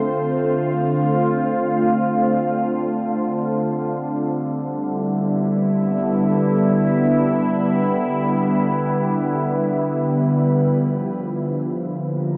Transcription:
0.00 12.37 D3 medium
0.00 3.62 A3 medium
0.00 3.61 C4 medium
0.00 3.60 F4 medium
0.00 3.61 C5 medium
4.14 10.41 G3 medium
4.59 10.42 E4 medium
4.76 10.42 B3 medium
5.98 10.43 B4 medium
10.55 12.37 F3 medium
11.88 12.37 A#3 medium
12.01 12.37 F4 medium
12.08 12.37 A#4 medium

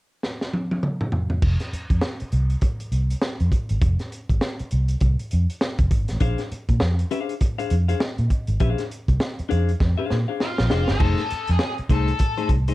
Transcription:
0.23 snare medium
0.41 snare soft
0.53 high tom medium
0.71 high tom medium
0.83 mid tom medium
1.01 mid tom medium
1.12 floor tom medium
1.30 floor tom medium
1.42 1.56 F1 medium
1.42 kick medium
1.42 crash medium
1.60 snare soft
1.60 closed hi-hat medium
1.73 muted fingered electric bass stroke soft
1.73 closed hi-hat medium
1.90 1.99 F2 medium
1.90 kick medium
1.90 closed hi-hat soft
2.01 snare medium
2.20 muted fingered electric bass stroke soft
2.20 closed hi-hat soft
2.32 2.54 C2 medium
2.32 closed hi-hat medium
2.50 closed hi-hat soft
2.61 kick medium
2.61 closed hi-hat medium
2.80 closed hi-hat medium
2.92 3.14 C2 medium
2.92 closed hi-hat medium
3.10 closed hi-hat medium
3.22 snare medium
3.40 3.49 F2 medium
3.40 closed hi-hat soft
3.52 kick medium
3.52 closed hi-hat medium
3.69 3.79 G#1 medium
3.69 closed hi-hat medium
3.82 3.95 F1 medium
3.82 kick loud
3.82 closed hi-hat medium
3.99 snare soft
3.99 closed hi-hat soft
4.12 closed hi-hat medium
4.29 4.39 G#1 medium
4.29 kick medium
4.29 closed hi-hat soft
4.41 snare loud
4.59 muted fingered electric bass stroke soft
4.59 closed hi-hat soft
4.71 4.94 C2 medium
4.71 closed hi-hat medium
4.88 closed hi-hat medium
5.01 5.15 C2 medium
5.01 kick medium
5.01 closed hi-hat medium
5.19 closed hi-hat soft
5.31 5.46 F2 medium
5.31 closed hi-hat medium
5.50 closed hi-hat medium
5.61 snare loud
5.79 5.88 F1 medium
5.79 kick medium
5.79 closed hi-hat soft
5.91 6.05 G#1 medium
5.91 kick medium
5.91 closed hi-hat medium
6.08 6.19 A1 medium
6.08 snare soft
6.08 closed hi-hat medium
6.20 6.34 A#1 medium
6.20 6.42 D4 medium
6.20 6.42 G#4 medium
6.20 6.42 C5 medium
6.20 6.42 F5 medium
6.20 kick loud
6.20 closed hi-hat medium
6.38 snare soft
6.38 closed hi-hat soft
6.52 muted fingered electric bass stroke soft
6.52 closed hi-hat medium
6.69 6.78 A#2 medium
6.69 kick medium
6.69 closed hi-hat medium
6.80 7.03 F2 medium
6.80 snare loud
6.99 closed hi-hat soft
7.11 7.33 D4 medium
7.11 7.33 G#4 medium
7.11 7.34 C5 medium
7.11 7.34 F5 medium
7.11 closed hi-hat medium
7.29 closed hi-hat soft
7.41 kick medium
7.41 closed hi-hat medium
7.58 7.75 D4 medium
7.58 7.75 G#4 medium
7.58 7.75 C5 medium
7.58 7.75 F5 medium
7.58 closed hi-hat soft
7.70 7.93 F2 medium
7.70 closed hi-hat medium
7.88 8.01 D4 soft
7.88 8.00 G#4 medium
7.88 8.01 C5 medium
7.88 8.00 F5 medium
7.88 closed hi-hat medium
8.00 snare loud
8.18 8.27 A#2 medium
8.18 closed hi-hat soft
8.30 kick medium
8.30 closed hi-hat medium
8.47 8.57 G#1 medium
8.47 closed hi-hat soft
8.60 8.74 A#1 loud
8.60 8.83 D4 medium
8.60 8.83 G#4 medium
8.60 8.83 C5 medium
8.60 8.83 F5 medium
8.60 kick loud
8.60 closed hi-hat medium
8.78 snare soft
8.78 closed hi-hat medium
8.91 closed hi-hat medium
9.08 9.17 C2 medium
9.08 kick medium
9.08 closed hi-hat soft
9.20 snare loud
9.39 muted fingered electric bass stroke medium
9.39 closed hi-hat soft
9.49 9.73 F2 medium
9.49 9.70 D4 medium
9.49 9.71 G#4 medium
9.49 9.71 C5 medium
9.49 9.71 F5 medium
9.49 closed hi-hat medium
9.69 closed hi-hat soft
9.80 9.94 F2 medium
9.80 kick medium
9.80 snare medium
9.98 10.17 D4 medium
9.98 10.17 G#4 medium
9.98 10.17 C5 medium
9.98 10.16 F5 medium
10.10 10.24 A#2 medium
10.10 snare medium
10.28 10.40 D4 medium
10.28 10.40 G#4 soft
10.28 10.40 C5 medium
10.28 10.40 F5 medium
10.40 10.90 F4 medium
10.40 snare medium
10.58 10.68 A#1 medium
10.58 snare medium
10.70 10.84 F1 medium
10.70 10.91 D4 medium
10.70 10.91 G#4 medium
10.70 10.92 C5 medium
10.70 10.92 G5 medium
10.70 snare medium
10.88 10.98 G1 medium
10.88 11.51 A4 medium
10.88 snare medium
11.00 11.13 F1 loud
11.00 11.20 A3 medium
11.00 11.21 D#4 medium
11.00 11.21 G#4 medium
11.00 11.21 C5 loud
11.00 kick loud
11.00 crash medium
11.18 snare soft
11.18 closed hi-hat soft
11.30 muted fingered electric bass stroke soft
11.30 closed hi-hat medium
11.47 11.58 F2 loud
11.47 11.62 G#4 medium
11.47 closed hi-hat soft
11.59 snare loud
11.63 11.71 G#4 medium
11.78 muted fingered electric bass stroke medium
11.78 closed hi-hat soft
11.89 12.11 C2 loud
11.89 12.10 A3 medium
11.89 12.11 D#4 medium
11.89 12.11 G#4 medium
11.89 12.47 A4 medium
11.89 12.11 C5 medium
11.89 kick medium
11.89 closed hi-hat medium
12.08 closed hi-hat soft
12.19 kick loud
12.19 closed hi-hat medium
12.37 12.54 A3 medium
12.37 12.54 D#4 medium
12.37 12.54 G#4 medium
12.37 12.53 C5 medium
12.37 closed hi-hat soft
12.49 12.71 C2 loud
12.49 kick medium
12.49 closed hi-hat medium
12.68 12.74 A3 soft
12.68 12.74 D#4 medium
12.68 12.74 G#4 medium
12.68 12.74 C5 medium
12.68 closed hi-hat medium

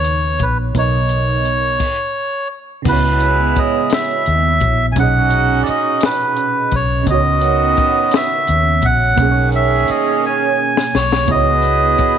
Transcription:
0.00 0.37 D#2 medium
0.00 0.69 C#3 medium
0.00 0.70 B3 medium
0.00 0.72 D#4 soft
0.00 0.73 B4 soft
0.00 0.45 C#5 medium
0.00 0.74 C#5 medium
0.04 closed hi-hat soft
0.39 0.72 A#1 medium
0.39 0.58 B4 medium
0.39 kick medium
0.39 closed hi-hat soft
0.73 1.77 B1 medium
0.73 1.80 B2 soft
0.73 1.80 B3 soft
0.73 1.81 D#4 soft
0.73 1.81 A#4 soft
0.73 kick medium
0.73 closed hi-hat medium
0.78 2.48 C#5 medium
0.78 1.82 D#5 medium
1.09 closed hi-hat soft
1.45 closed hi-hat soft
1.80 kick medium
1.80 crash medium
2.82 4.90 C#3 medium
2.82 4.58 G#3 medium
2.82 4.92 B3 medium
2.82 4.57 B3 medium
2.82 4.58 E4 medium
2.82 kick loud
2.82 crash medium
2.86 3.52 C#2 loud
2.86 4.93 E4 medium
2.86 4.94 F#4 medium
2.86 3.59 B4 medium
2.93 4.96 C#5 medium
3.20 closed hi-hat medium
3.56 3.93 D#5 medium
3.56 muted fingered electric bass stroke soft
3.56 kick medium
3.56 closed hi-hat soft
3.90 4.86 E5 medium
3.90 snare loud
3.90 closed hi-hat medium
4.26 4.58 D#2 medium
4.26 closed hi-hat medium
4.60 4.93 A#1 medium
4.60 kick medium
4.60 closed hi-hat soft
4.92 7.02 A#2 medium
4.92 7.01 B2 medium
4.92 6.68 C#4 medium
4.92 6.68 D#4 medium
4.92 6.68 F#4 medium
4.92 4.98 G#5 medium
4.92 kick loud
4.92 closed hi-hat medium
4.97 5.63 B1 loud
4.97 7.03 C#4 medium
4.97 7.05 G#4 medium
4.97 5.63 F#5 medium
5.03 7.06 D#5 medium
5.30 closed hi-hat medium
5.63 5.68 D5 medium
5.63 closed hi-hat medium
5.69 6.04 D#5 medium
5.69 muted fingered electric bass stroke soft
6.01 snare loud
6.01 closed hi-hat medium
6.05 6.76 B4 medium
6.36 closed hi-hat medium
6.71 7.04 B1 medium
6.71 7.06 C#5 medium
6.71 kick medium
6.71 closed hi-hat soft
7.03 9.12 C#3 medium
7.03 9.13 B3 medium
7.03 kick loud
7.03 closed hi-hat medium
7.07 7.73 C#2 medium
7.07 8.79 D#3 medium
7.07 8.79 B3 medium
7.07 9.14 C#4 medium
7.07 8.79 F#4 medium
7.07 9.16 F#4 medium
7.07 8.17 D#5 loud
7.14 9.17 C#5 medium
7.41 closed hi-hat soft
7.77 muted fingered electric bass stroke soft
7.77 kick medium
7.77 closed hi-hat medium
8.11 snare loud
8.11 closed hi-hat medium
8.16 8.86 E5 medium
8.47 8.80 D#2 medium
8.47 closed hi-hat medium
8.82 9.15 A#1 medium
8.82 9.50 F#5 loud
8.82 kick medium
8.82 closed hi-hat medium
9.14 9.84 B1 loud
9.14 11.22 B2 medium
9.14 10.89 D#3 medium
9.14 11.24 A#3 medium
9.14 10.89 C#4 medium
9.14 10.89 G#4 medium
9.14 kick loud
9.14 closed hi-hat medium
9.20 11.25 C#4 medium
9.20 11.26 G#4 medium
9.25 9.28 C#5 soft
9.31 11.31 C#5 medium
9.52 9.90 E5 medium
9.52 closed hi-hat soft
9.88 10.25 D#5 medium
9.88 muted fingered electric bass stroke soft
9.88 closed hi-hat soft
10.26 10.96 G#5 medium
10.77 snare medium
10.95 11.25 B1 medium
10.95 11.30 C#5 loud
10.95 snare medium
11.12 snare medium
11.25 11.94 C#2 loud
11.25 12.18 C#3 soft
11.25 12.18 B3 medium
11.25 12.18 F#4 medium
11.25 12.18 G#4 medium
11.25 12.18 B4 medium
11.25 kick loud
11.25 closed hi-hat medium
11.30 12.18 E4 medium
11.30 12.18 F#4 medium
11.30 12.18 D#5 loud
11.35 12.18 C#5 medium
11.62 closed hi-hat medium
11.98 muted fingered electric bass stroke soft
11.98 kick medium
11.98 closed hi-hat medium

